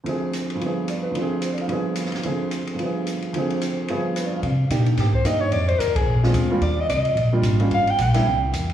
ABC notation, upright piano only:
X:1
M:4/4
L:1/16
Q:"Swing" 1/4=220
K:Cm
V:1 name="Upright piano"
z12 d2 =B2- | =B z3 (3c2 d2 f2 z8 | z16 | z12 (3=B2 d2 f2 |
z16 | z16 | z16 | z16 |]
V:2 name="Upright piano"
[D,,D,F,CA]8 [G,,D,F,=B,A]8 | [D,,D,F,CA]8 [G,,D,F,=B,A]8 | [D,,D,F,CA]8 [G,,D,F,=B,A]8 | [D,,D,F,CA]8 [G,,D,F,=B,A]8 |
z4 [B,DEG]6 z2 [B,DEG]4 | z8 z2 [A,CDF]4 [G,B,DF]2 | z8 z2 [G,B,DF]4 [G,B,_DF]2 | z6 [G,B,D=E]2 z8 |]